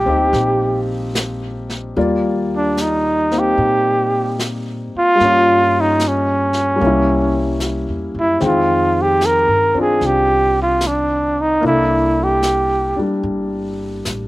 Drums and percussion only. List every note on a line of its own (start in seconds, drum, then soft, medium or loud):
0.33 brush sweep soft
0.33 snare soft
1.15 snare soft
1.15 hi-hat pedal medium
1.70 snare soft
1.97 brush sweep soft
2.77 snare soft
2.77 hi-hat pedal soft
3.31 snare soft
3.58 brush sweep soft
4.39 snare soft
4.39 hi-hat pedal soft
5.20 brush sweep soft
5.20 snare soft
6.00 snare soft
6.00 hi-hat pedal soft
6.53 snare soft
6.80 brush sweep soft
7.60 snare soft
7.60 hi-hat pedal soft
8.40 brush sweep soft
8.40 snare soft
9.21 snare soft
9.21 hi-hat pedal soft
10.01 brush sweep soft
10.01 snare soft
10.81 snare soft
10.81 hi-hat pedal soft
11.62 brush sweep soft
12.43 snare soft
12.43 hi-hat pedal soft
13.24 brush sweep soft
14.05 snare soft
14.05 hi-hat pedal soft